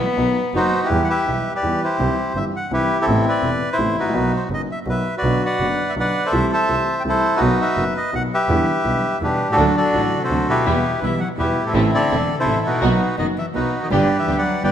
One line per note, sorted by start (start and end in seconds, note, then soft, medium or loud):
0.00 0.73 B3 medium
0.17 0.32 B1 medium
0.17 0.33 B1 medium
0.17 0.32 B2 medium
0.17 0.32 D#3 soft
0.17 0.32 F#3 soft
0.17 0.33 F#3 soft
0.17 0.33 B3 soft
0.17 0.33 D#4 medium
0.17 0.33 F#4 soft
0.54 0.69 F#1 medium
0.54 0.69 F#2 soft
0.54 0.69 D#3 soft
0.54 0.69 F#3 soft
0.54 0.70 F#3 soft
0.54 0.69 B3 soft
0.54 0.70 B3 soft
0.54 0.70 D#4 soft
0.54 0.89 D#4 medium
0.54 0.69 F#4 soft
0.54 0.89 F#4 medium
0.54 0.81 C5 medium
0.84 1.33 E4 medium
0.84 1.08 G4 medium
0.84 1.02 B4 medium
0.90 1.05 E2 medium
0.90 1.06 E2 medium
0.90 1.06 E3 medium
0.90 1.05 G3 medium
0.90 1.06 B3 medium
0.90 1.06 G4 medium
1.04 1.10 F#5 medium
1.09 1.54 G4 medium
1.09 1.54 B4 medium
1.09 1.52 E5 medium
1.26 1.42 B1 medium
1.26 1.42 B1 soft
1.26 1.42 B2 soft
1.26 1.42 E3 soft
1.26 1.42 G3 soft
1.26 1.42 B3 soft
1.26 1.42 G4 soft
1.55 1.83 G4 medium
1.55 1.97 B4 medium
1.55 1.80 D5 medium
1.63 1.78 E2 medium
1.63 1.78 E3 medium
1.63 1.78 G3 soft
1.63 1.78 B3 soft
1.63 1.78 G4 soft
1.83 2.33 E4 medium
1.83 2.33 G4 medium
1.83 2.39 C5 medium
1.99 2.14 C2 medium
1.99 2.14 C3 medium
1.99 2.14 E3 medium
1.99 2.14 G3 medium
1.99 2.14 C4 medium
1.99 2.15 G4 medium
2.35 2.50 G1 medium
2.35 2.51 G1 soft
2.35 2.51 G2 soft
2.35 2.51 E3 soft
2.35 2.51 G3 soft
2.35 2.51 C4 soft
2.35 2.51 G4 soft
2.35 2.45 E5 medium
2.56 2.72 F#5 medium
2.71 2.86 C2 medium
2.71 2.87 C3 medium
2.71 2.86 E3 soft
2.71 2.86 G3 soft
2.71 2.87 C4 soft
2.71 2.99 E4 medium
2.71 2.87 G4 soft
2.71 3.06 G4 medium
2.71 2.98 B4 medium
3.01 3.50 C4 medium
3.01 3.50 E4 medium
3.01 3.25 A4 medium
3.07 3.22 A1 medium
3.07 3.23 A1 medium
3.07 3.23 A2 medium
3.07 3.23 C3 medium
3.07 3.23 A3 medium
3.07 3.23 B3 medium
3.07 3.23 E4 medium
3.28 3.77 B4 medium
3.28 3.69 D5 medium
3.43 3.58 E1 medium
3.43 3.58 E1 soft
3.43 3.58 E2 soft
3.43 3.58 C3 soft
3.43 3.58 A3 soft
3.43 3.58 B3 soft
3.43 3.58 E4 soft
3.73 4.13 E4 medium
3.73 3.97 C5 medium
3.78 3.94 A1 medium
3.78 3.94 A2 medium
3.78 3.94 C3 soft
3.78 3.94 A3 soft
3.78 3.94 B3 soft
3.78 3.94 E4 soft
3.97 4.14 A1 soft
3.97 4.49 D#4 medium
3.97 4.49 F#4 medium
3.97 4.32 B4 medium
4.02 4.06 G#1 soft
4.02 4.10 A1 medium
4.10 4.15 A#1 medium
4.10 4.30 B1 medium
4.10 4.30 B2 medium
4.10 4.29 D#3 medium
4.10 4.30 F#3 medium
4.10 4.30 B3 medium
4.10 4.30 F#4 medium
4.14 4.30 B1 medium
4.36 4.44 C5 medium
4.50 4.66 F#1 medium
4.50 4.66 F#1 soft
4.50 4.66 F#2 soft
4.50 4.66 D#3 soft
4.50 4.66 F#3 soft
4.50 4.66 B3 soft
4.50 4.66 F#4 soft
4.54 4.62 D#5 medium
4.71 4.79 E5 medium
4.86 5.02 B1 soft
4.86 5.02 B1 medium
4.86 5.02 B2 soft
4.86 5.02 D#3 soft
4.86 5.02 F#3 soft
4.86 5.02 B3 soft
4.86 5.02 F#4 soft
4.86 5.16 B4 medium
4.91 5.15 E5 medium
5.17 5.67 F#4 medium
5.17 5.44 B4 medium
5.17 5.42 D5 medium
5.23 5.39 B1 medium
5.23 5.39 B2 medium
5.23 5.39 D3 medium
5.23 5.39 F#3 soft
5.23 5.39 B3 medium
5.23 5.39 F#4 medium
5.46 5.95 B4 medium
5.46 5.95 D5 medium
5.46 5.91 F#5 medium
5.60 5.76 F#1 soft
5.60 5.76 F#2 soft
5.60 5.76 D3 soft
5.60 5.76 F#3 soft
5.60 5.76 B3 soft
5.60 5.76 F#4 soft
5.89 5.93 E5 medium
5.96 6.12 B1 medium
5.96 6.12 B2 soft
5.96 6.12 D3 soft
5.96 6.12 F#3 soft
5.96 6.12 B3 soft
5.96 6.12 F#4 soft
5.96 6.32 B4 medium
5.96 6.32 D5 medium
5.96 6.24 F#5 medium
6.26 6.76 A4 medium
6.26 6.52 C5 medium
6.26 6.51 E5 medium
6.32 6.48 C2 medium
6.32 6.48 C3 medium
6.32 6.48 E3 soft
6.32 6.48 A3 medium
6.32 6.48 E4 medium
6.53 7.02 C5 medium
6.53 7.03 E5 medium
6.53 6.94 A5 medium
6.68 6.84 C2 medium
6.68 6.84 C3 soft
6.68 6.84 E3 soft
6.68 6.84 A3 soft
6.68 6.84 E4 soft
7.00 7.03 G5 medium
7.05 7.20 C2 soft
7.05 7.20 C2 medium
7.05 7.20 C3 soft
7.05 7.20 E3 soft
7.05 7.20 A3 soft
7.05 7.20 E4 soft
7.05 7.40 E4 medium
7.09 7.41 A4 medium
7.09 7.35 C5 medium
7.36 7.84 D#4 medium
7.36 7.84 F#4 medium
7.36 7.59 B4 medium
7.41 7.56 B1 medium
7.41 7.56 B2 medium
7.41 7.56 D#3 medium
7.41 7.56 F#3 medium
7.41 7.56 B3 medium
7.41 7.56 F#4 medium
7.61 8.11 B4 medium
7.61 7.94 E5 medium
7.76 7.92 F#1 soft
7.76 7.92 F#1 medium
7.76 7.92 F#2 soft
7.76 7.91 D#3 soft
7.76 7.92 F#3 soft
7.76 7.92 B3 soft
7.76 7.92 F#4 soft
7.97 8.14 D#5 medium
8.13 8.28 B1 medium
8.13 8.28 B2 soft
8.13 8.28 D#3 soft
8.13 8.28 F#3 soft
8.13 8.28 B3 soft
8.13 8.28 F#4 soft
8.13 8.23 F#5 medium
8.34 9.19 G4 medium
8.34 9.19 B4 medium
8.34 9.19 E5 medium
8.48 8.64 E2 medium
8.48 8.64 D3 medium
8.48 8.64 E3 medium
8.48 8.64 G3 medium
8.48 8.64 B3 medium
8.48 8.64 E4 medium
8.84 9.00 B1 soft
8.84 9.00 B1 medium
8.84 9.00 B2 soft
8.84 9.00 D3 soft
8.84 9.00 G3 soft
8.84 9.00 B3 soft
8.84 9.00 E4 soft
9.21 9.36 E2 medium
9.21 9.37 E2 soft
9.21 9.47 B2 medium
9.21 9.37 D3 soft
9.21 9.37 E3 soft
9.21 9.37 G3 soft
9.21 9.37 B3 soft
9.21 9.51 D4 medium
9.21 9.37 E4 soft
9.21 9.57 G4 medium
9.21 9.48 B4 medium
9.49 9.74 A2 medium
9.49 10.02 D4 medium
9.49 9.76 F#4 soft
9.49 9.76 A4 medium
9.57 9.73 D2 medium
9.57 9.73 D3 medium
9.57 9.73 F#3 medium
9.57 9.73 A3 medium
9.57 9.73 D4 medium
9.57 9.73 F#4 medium
9.77 10.19 D3 medium
9.77 10.22 F#4 medium
9.77 10.23 A4 medium
9.77 10.19 D5 medium
9.93 10.09 A1 soft
9.93 10.09 A1 medium
9.93 10.09 A2 soft
9.93 10.09 D3 soft
9.93 10.09 F#3 soft
9.93 10.10 F#3 soft
9.93 10.09 A3 soft
9.93 10.10 A3 soft
9.93 10.10 D4 medium
9.93 10.09 F#4 soft
10.22 10.47 C3 medium
10.22 10.65 F#4 medium
10.22 10.65 A4 medium
10.22 10.48 C5 medium
10.30 10.45 D2 medium
10.30 10.45 D3 soft
10.30 10.45 F#3 soft
10.30 10.46 F#3 soft
10.30 10.45 A3 soft
10.30 10.46 A3 soft
10.30 10.46 D4 soft
10.30 10.46 F#4 medium
10.48 10.99 B2 medium
10.48 11.00 E4 medium
10.48 11.00 G4 medium
10.48 11.05 B4 medium
10.65 10.81 E2 medium
10.65 10.81 E3 medium
10.65 10.81 G3 medium
10.65 10.82 G3 medium
10.65 10.81 B3 medium
10.65 10.82 B3 medium
10.65 10.82 E4 medium
10.65 10.82 G4 medium
11.02 11.18 B1 medium
11.02 11.18 B1 soft
11.02 11.18 B2 soft
11.02 11.18 E3 soft
11.02 11.20 E3 medium
11.02 11.18 G3 soft
11.02 11.18 B3 soft
11.02 11.18 E4 medium
11.02 11.18 G4 soft
11.02 11.20 E5 medium
11.20 11.28 F#3 medium
11.20 11.28 F#5 medium
11.38 11.54 E2 medium
11.38 11.64 B2 medium
11.38 11.54 E3 medium
11.38 11.54 G3 soft
11.38 11.54 B3 soft
11.38 11.65 E4 medium
11.38 11.54 E4 medium
11.38 11.54 G4 soft
11.38 11.73 G4 medium
11.38 11.64 B4 medium
11.66 11.91 A2 medium
11.66 12.16 C4 medium
11.66 12.16 E4 medium
11.66 11.91 A4 medium
11.74 11.90 A1 medium
11.74 11.90 A2 medium
11.74 11.90 E3 medium
11.74 11.89 A3 medium
11.74 11.90 A3 medium
11.74 11.90 C4 medium
11.74 11.90 E4 medium
11.74 11.90 A4 medium
11.94 12.35 D3 medium
11.94 12.39 A4 medium
11.94 12.36 D5 medium
12.10 12.26 E1 medium
12.10 12.26 E1 soft
12.10 12.26 E2 soft
12.10 12.26 E3 soft
12.10 12.26 A3 soft
12.10 12.26 C4 soft
12.10 12.26 E4 medium
12.10 12.26 A4 soft
12.38 12.63 C3 medium
12.38 12.80 E4 medium
12.38 12.81 A4 soft
12.38 12.64 C5 medium
12.46 12.61 A1 medium
12.46 12.62 A1 soft
12.46 12.62 A2 soft
12.46 12.61 E3 soft
12.46 12.62 A3 soft
12.46 12.62 C4 soft
12.46 12.62 E4 soft
12.46 12.62 A4 soft
12.66 13.15 B2 medium
12.66 13.16 D#4 medium
12.66 13.16 F#4 medium
12.66 13.16 B4 medium
12.82 12.97 B1 medium
12.82 12.97 B2 medium
12.82 12.97 D#3 medium
12.82 12.97 F#3 medium
12.82 12.97 B3 medium
12.82 12.98 B3 medium
12.82 12.98 D#4 medium
12.82 12.98 F#4 medium
13.18 13.34 F#1 soft
13.18 13.34 F#1 medium
13.18 13.33 F#2 soft
13.18 13.34 D#3 soft
13.18 13.27 D#3 medium
13.18 13.34 F#3 soft
13.18 13.33 B3 soft
13.18 13.34 B3 soft
13.18 13.34 D#4 soft
13.18 13.34 F#4 soft
13.18 13.34 F#4 medium
13.18 13.27 D#5 medium
13.37 13.45 E3 medium
13.37 13.46 E5 medium
13.54 13.70 B1 medium
13.54 13.71 B1 medium
13.54 13.70 B2 medium
13.54 13.81 B2 medium
13.54 13.70 D#3 soft
13.54 13.70 F#3 soft
13.54 13.70 B3 soft
13.54 13.89 D#4 soft
13.54 13.71 D#4 soft
13.54 13.70 F#4 soft
13.54 13.71 F#4 soft
13.54 13.89 F#4 medium
13.54 13.80 B4 medium
13.82 13.86 D#3 medium
13.82 13.87 D#5 medium
13.90 14.06 G1 medium
13.90 14.07 G1 medium
13.90 14.06 G2 medium
13.90 14.06 D3 medium
13.90 14.17 D3 medium
13.90 14.06 G3 medium
13.90 14.06 B3 medium
13.90 14.07 B3 medium
13.90 14.07 D4 medium
13.90 14.06 G4 medium
13.90 14.07 G4 medium
13.90 14.42 G4 medium
13.90 14.37 B4 medium
13.90 14.17 D5 medium
14.19 14.36 E3 medium
14.19 14.37 E5 medium
14.27 14.43 D2 medium
14.27 14.43 D2 soft
14.27 14.43 D3 soft
14.27 14.43 G3 soft
14.27 14.43 B3 soft
14.27 14.43 D4 soft
14.27 14.43 G4 soft
14.27 14.43 G4 medium
14.37 14.62 F#3 medium
14.37 14.63 B4 soft
14.37 14.63 D5 medium
14.37 14.62 F#5 medium
14.64 14.72 G1 medium
14.64 14.72 G2 soft
14.64 14.72 D3 soft
14.64 14.72 G3 soft
14.64 14.72 G3 medium
14.64 14.72 B3 soft
14.64 14.72 D4 soft
14.64 14.72 G4 soft
14.64 14.72 B4 medium
14.64 14.72 D5 medium
14.64 14.72 G5 medium